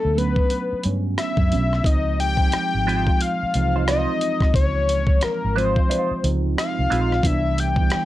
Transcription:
Already playing: tine electric piano F#3 A3 B3 D4, analog synth lead A4
0.05 fingered electric bass D2
0.16 tine electric piano F#3 A3 B3 C#4, analog synth lead B4, closed hi-hat
0.36 kick
0.50 closed hi-hat
0.73 muted fingered electric bass stroke
0.83 fingered electric bass G2, tine electric piano F#3 A3 B3 C#4, closed hi-hat
1.18 analog synth lead E5, cross-stick, closed hi-hat
1.37 fingered electric bass F#2, kick
1.51 fingered electric bass B1, tine electric piano F#3 A3 B3 C#4, closed hi-hat
1.73 cross-stick
1.84 fingered electric bass C#2, tine electric piano F3 G#3 C4 D#4, analog synth lead D#5, kick, closed hi-hat
2.20 analog synth lead G5, closed hi-hat
2.37 tine electric piano F3 G#3 C4 D#4, kick
2.52 muted clean electric guitar stroke, muted fingered electric bass stroke, cross-stick, closed hi-hat
2.75 fingered electric bass G#1
2.85 tine electric piano F3 G#3 C4 F4, clean electric guitar D#4 F4 C5, cross-stick, closed hi-hat
3.07 kick
3.21 analog synth lead F5, closed hi-hat
3.43 muted fingered electric bass stroke
3.54 fingered electric bass C2, tine electric piano E3 G#3 C4 D#4, closed hi-hat
3.61 tine electric piano F3
3.76 clean electric guitar D#4 F4 C5
3.88 clean electric guitar D#4 F4 C5, analog synth lead D#5, cross-stick, closed hi-hat
4.21 closed hi-hat
4.40 kick, cross-stick
4.54 fingered electric bass C#2, analog synth lead C#5, kick, closed hi-hat
4.89 closed hi-hat
5.07 kick
5.21 analog synth lead A#4, muted clean electric guitar stroke, muted fingered electric bass stroke, cross-stick, closed hi-hat
5.44 fingered electric bass G#1
5.56 tine electric piano F3 G#3 C4 F4, clean electric guitar D#4 F4 C5, analog synth lead C5, closed hi-hat
5.76 kick
5.89 clean electric guitar D#4 F4 C5, closed hi-hat
6.11 muted fingered electric bass stroke
6.23 fingered electric bass C#2, tine electric piano F3 G#3 C4 D#4, closed hi-hat
6.58 analog synth lead F5, muted clean electric guitar stroke, cross-stick, closed hi-hat
6.79 fingered electric bass C2
6.90 fingered electric bass A#1, tine electric piano F3 G#3 C4 F4, clean electric guitar D#4 F4 C5, closed hi-hat
7.12 cross-stick
7.23 fingered electric bass C2, tine electric piano E3 G3 B3 D4, analog synth lead E5, kick, closed hi-hat
7.58 analog synth lead G5, closed hi-hat
7.76 tine electric piano E3 G3, kick
7.80 tine electric piano B3 E4
7.90 muted clean electric guitar stroke, cross-stick, closed hi-hat

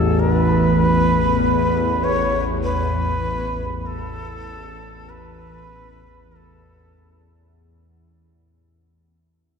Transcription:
Already playing: synth drone A1 E2, singing bowl A3, shakuhachi A4
0.20 shakuhachi A#4
0.31 shakuhachi B4
2.03 shakuhachi C#5
2.63 shakuhachi B4
3.86 shakuhachi A4
5.09 shakuhachi B4
6.31 shakuhachi A#4
6.35 shakuhachi A4

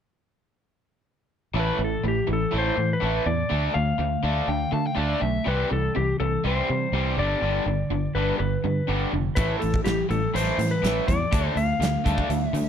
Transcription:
1.54 fingered electric bass A1, overdriven electric guitar A2 E3 A3
1.59 electric slide guitar B4
1.79 fingered electric bass A1, overdriven electric guitar A2 E3
1.84 electric slide guitar A4
2.04 fingered electric bass A1, overdriven electric guitar A2 E3
2.08 electric slide guitar G4
2.27 fingered electric bass A1, overdriven electric guitar A2 E3
2.33 electric slide guitar A4
2.52 fingered electric bass A1, overdriven electric guitar A2 E3 A3
2.58 electric slide guitar C5
2.76 overdriven electric guitar A2 E3, fingered electric bass A2
2.93 electric slide guitar B4
3.00 fingered electric bass A1, overdriven electric guitar A2 E3 A3
3.26 fingered electric bass E2, overdriven electric guitar A2 E3, electric slide guitar D5
3.49 fingered electric bass D2, overdriven electric guitar D3 A3 D4
3.74 fingered electric bass D2, overdriven electric guitar D3 A3, electric slide guitar F5
3.98 fingered electric bass D2, overdriven electric guitar D3 A3
4.23 fingered electric bass D2, overdriven electric guitar D3 A3 D4
4.47 fingered electric bass D2, overdriven electric guitar D3 A3, lead electric guitar G5
4.71 overdriven electric guitar D3 A3, fingered electric bass D3, lead electric guitar A5
4.87 lead electric guitar G5
4.95 fingered electric bass D2, overdriven electric guitar D3 A3 D4, lead electric guitar D5
5.20 fingered electric bass B1, overdriven electric guitar D3 A3, lead electric guitar E5
5.45 fingered electric bass C2, overdriven electric guitar C3 E3 G3 C4, electric slide guitar B4
5.70 fingered electric bass C2, overdriven electric guitar C3 E3 G3, electric slide guitar A4
5.95 fingered electric bass C2, overdriven electric guitar C3 E3 G3, electric slide guitar G4
6.20 fingered electric bass C2, overdriven electric guitar C3 E3 G3, electric slide guitar A4
6.44 fingered electric bass C2, overdriven electric guitar C3 E3 G3 C4, electric slide guitar C5
6.69 overdriven electric guitar C3 E3 G3, fingered electric bass C3
6.92 fingered electric bass C2, overdriven electric guitar C3 E3 G3 C4
7.17 fingered electric bass G1, overdriven electric guitar G2 D3 G3, electric slide guitar D5
7.42 fingered electric bass G1, overdriven electric guitar G2 D3 G3
7.66 fingered electric bass G1, overdriven electric guitar G2 D3
7.90 fingered electric bass G1, overdriven electric guitar G2 D3
8.15 fingered electric bass G1, overdriven electric guitar G2 D3 G3, electric slide guitar B4
8.38 fingered electric bass G1, overdriven electric guitar G2 D3, electric slide guitar B4
8.64 overdriven electric guitar G2 D3, fingered electric bass G2
8.87 fingered electric bass G1, overdriven electric guitar G2 D3 G3
9.13 fingered electric bass F1, overdriven electric guitar G2 D3
9.35 fingered electric bass A1, overdriven electric guitar A2 E3 A3, electric slide guitar B4, kick, closed hi-hat
9.60 fingered electric bass A1, overdriven electric guitar A2 E3, electric slide guitar A4, closed hi-hat
9.74 kick
9.84 fingered electric bass A1, overdriven electric guitar A2 E3, electric slide guitar G4, snare, closed hi-hat
10.09 fingered electric bass A1, overdriven electric guitar A2 E3, electric slide guitar A4, closed hi-hat
10.34 fingered electric bass A1, overdriven electric guitar A2 E3 A3, electric slide guitar C5, closed hi-hat
10.58 fingered electric bass A2, overdriven electric guitar A2 E3, closed hi-hat
10.71 electric slide guitar B4
10.82 fingered electric bass A1, overdriven electric guitar A2 E3 A3, snare, closed hi-hat
11.07 fingered electric bass E2, overdriven electric guitar A2 E3, electric slide guitar D5, kick, closed hi-hat
11.31 fingered electric bass D2, overdriven electric guitar D3 A3 D4, kick, closed hi-hat
11.56 fingered electric bass D2, overdriven electric guitar D3 A3, electric slide guitar F5, closed hi-hat
11.80 fingered electric bass D2, overdriven electric guitar D3 A3, snare, closed hi-hat
12.05 fingered electric bass D2, overdriven electric guitar D3 A3 D4, kick, closed hi-hat
12.18 kick
12.29 fingered electric bass D2, overdriven electric guitar D3 A3, closed hi-hat
12.48 electric slide guitar E5
12.53 fingered electric bass D3, overdriven electric guitar D3 A3, closed hi-hat

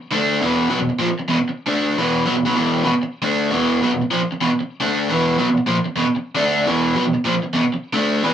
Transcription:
0.12 overdriven electric guitar D3 A3 D4
0.41 overdriven electric guitar E2 B2 E3
0.69 overdriven electric guitar B2 F#3
0.79 overdriven electric guitar E2 B2
0.90 muted overdriven electric guitar stroke
0.99 overdriven electric guitar A#2 F3
1.11 muted overdriven electric guitar stroke
1.20 muted overdriven electric guitar stroke
1.29 overdriven electric guitar E2 B2
1.40 muted overdriven electric guitar stroke
1.49 muted overdriven electric guitar stroke
1.67 overdriven electric guitar D3 A3 D4
1.97 overdriven electric guitar E2 B2 E3
2.26 overdriven electric guitar B2 F#3
2.36 overdriven electric guitar E2 B2
2.45 overdriven electric guitar B2 F#3
2.55 overdriven electric guitar E2 B2 E3
2.83 overdriven electric guitar E2 B2
2.93 muted overdriven electric guitar stroke
3.03 muted overdriven electric guitar stroke
3.22 overdriven electric guitar D3 A3 D4
3.51 overdriven electric guitar E2 B2 E3
3.82 overdriven electric guitar B2 F#3
3.92 overdriven electric guitar E2 B2
4.02 muted overdriven electric guitar stroke
4.11 overdriven electric guitar A#2 F3
4.22 muted overdriven electric guitar stroke
4.32 muted overdriven electric guitar stroke
4.41 overdriven electric guitar E2 B2
4.52 muted overdriven electric guitar stroke
4.60 muted overdriven electric guitar stroke
4.80 overdriven electric guitar D3 A3 D4
5.09 overdriven electric guitar E2 B2 E3
5.38 overdriven electric guitar B2 F#3
5.49 overdriven electric guitar E2 B2
5.58 muted overdriven electric guitar stroke
5.67 overdriven electric guitar A#2 F3
5.77 muted overdriven electric guitar stroke
5.86 muted overdriven electric guitar stroke
5.96 overdriven electric guitar E2 B2
6.06 muted overdriven electric guitar stroke
6.16 muted overdriven electric guitar stroke
6.35 overdriven electric guitar D3 A3 D4
6.66 overdriven electric guitar E2 B2 E3
6.96 overdriven electric guitar B2 F#3
7.05 overdriven electric guitar E2 B2
7.15 muted overdriven electric guitar stroke
7.25 overdriven electric guitar A#2 F3
7.35 muted overdriven electric guitar stroke
7.44 muted overdriven electric guitar stroke
7.54 overdriven electric guitar E2 B2
7.64 muted overdriven electric guitar stroke
7.74 muted overdriven electric guitar stroke
7.93 overdriven electric guitar D3 A3 D4
8.23 overdriven electric guitar E2 B2 E3

